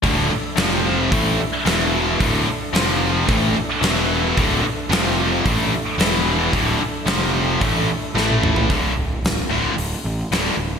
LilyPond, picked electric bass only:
\new Staff \with { instrumentName = "Picked electric bass" } { \clef bass \time 4/4 \key d \minor \tempo 4 = 111 d,,8 r8 f,,4 a,,8 r8 e,,4 | d,,8 r8 f,,4 a,,8 r8 e,,4 | d,,8 r8 f,,4 a,,8 r8 e,,4 | d,,8 r8 f,,4 a,,8 r8 a,,4 |
d,,8 d,,8 d,,8 d,,8 d,,8 a,,8 d,,8 d,,8 | }